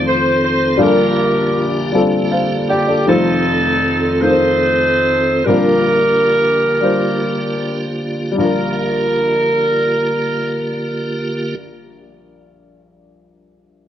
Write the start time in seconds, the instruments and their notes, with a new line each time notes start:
Already playing: upright piano F1 F2 A3 D#4 F4 C5, tonewheel organ D#3 C4 F4 A4
0.07 saxophone section C5
0.44 saxophone section C5
0.77 upright piano A#1 A#2 G3 D4 F4 A4
0.81 tonewheel organ D3 A#3 G4, saxophone section D4 G4 A#4
0.86 upright piano A#4
1.92 upright piano G3 C4 F4 A4
2.00 upright piano D4
2.31 upright piano C5 F5
2.69 saxophone section G4, upright piano D5 G5
2.88 upright piano A4 D5
3.06 upright piano F1 F2 G3 D#4 F4 C5, tonewheel organ D#3 C4 F4 A4, saxophone section C4 D#4 A4
3.12 upright piano A3
4.21 upright piano A3 D#4 F4 A#4, saxophone section D#4 A4 C5
4.31 upright piano C5
5.45 upright piano A#1 A#2 G3 C4 F4 A#4, tonewheel organ D3 A#3 G4, saxophone section D4 G4 A#4
5.52 upright piano D4
6.80 upright piano G3 D4 F4 C5
8.32 upright piano G3
8.36 upright piano A#1 D4 F4, tonewheel organ D3 A#3 F4, saxophone section A#4
8.40 tonewheel organ G4, upright piano A#4